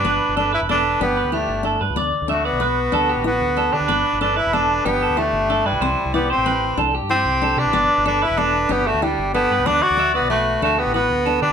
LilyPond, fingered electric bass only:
\new Staff \with { instrumentName = "Fingered electric bass" } { \clef bass \time 12/8 \key g \major \tempo 4. = 125 g,,8 r16 g,,4 e,,4~ e,,16 g,,8. d,8. g,,4 g,16 cis,16 | d,8 r16 d,4 b,,4~ b,,16 d,8. a,,8. d,4 d16 d,16 | g,,8 r16 g,,4 e,,4~ e,,16 g,,8. d,8. g,,4 g,16 b,,16 | c,8 r16 c,4 a,,4~ a,,16 c,8. g,8. c,4 c16 a,,16 |
g,,8 r16 g,,4 e,,4~ e,,16 g,,8. d,8. g,,4 g,16 c,16 | d,8 r16 d,4 b,,4~ b,,16 d,8. a,,8. d,4 d16 r16 | }